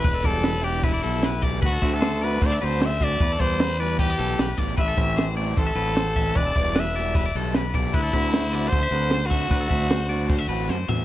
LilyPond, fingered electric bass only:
\new Staff \with { instrumentName = "Fingered electric bass" } { \clef bass \time 4/4 \key e \minor \tempo 4 = 152 e,,8 e,,2 b,,4. | d,8 d,4. d,8 d,4. | e,8 e,2 b,,8 b,,8 a,,8 | a,,8 a,,4. a,,8 a,,4. |
e,,8 e,,2 b,,4. | d,8 d,4. d,8 d,4. | d,8 d,2 a,,8 fis,8 e,8 | }